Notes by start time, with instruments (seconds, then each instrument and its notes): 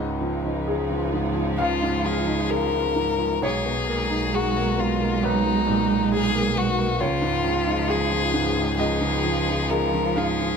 Already playing: felt piano C#2 G#2 D#5, double bass C#2, string section F3 D#4 G#4, cello F3
0.21 felt piano F3
0.45 felt piano D#4
0.67 felt piano G#4
0.91 felt piano F3
1.13 felt piano G#2
1.35 felt piano F3
1.58 felt piano C#2 F5, violin F4
1.82 felt piano G#2
2.05 felt piano F3, violin G#4
2.27 felt piano D#4
2.50 felt piano G#4, violin A#4
2.73 felt piano F3
2.96 felt piano G#2
3.18 felt piano F3
3.42 felt piano B1 C#5, double bass B1, string section G#3 D#4 A#5, cello G#3, violin G#4
3.65 felt piano B2
3.87 felt piano A#3
4.10 felt piano D#4
4.33 violin F#4, felt piano G#4
4.57 felt piano A#3
4.77 felt piano B2, violin F4
5.00 felt piano A#3
5.23 felt piano B1 B4, violin D#4
5.45 felt piano B2
5.67 felt piano A#2
5.89 felt piano D#4
6.12 felt piano G#4, violin G#4
6.34 felt piano A#3
6.56 felt piano B2, violin F#4
6.78 felt piano A#3
6.99 felt piano C#2 C#5, double bass C#2, string section F3 D#4 G#4, cello F3, violin F4
7.22 felt piano G#2
7.44 felt piano F3
7.67 felt piano D#4
7.88 felt piano G#4, violin G#4
8.12 felt piano F3
8.34 felt piano G#2
8.56 felt piano F3
8.77 felt piano C#2 D#5, cello F3, violin G#4
9.01 felt piano G#2
9.24 felt piano F3
9.48 felt piano D#4
9.70 felt piano G#4, violin A#4
9.94 felt piano F3
10.16 felt piano G#2 F5, violin G#4
10.41 felt piano F3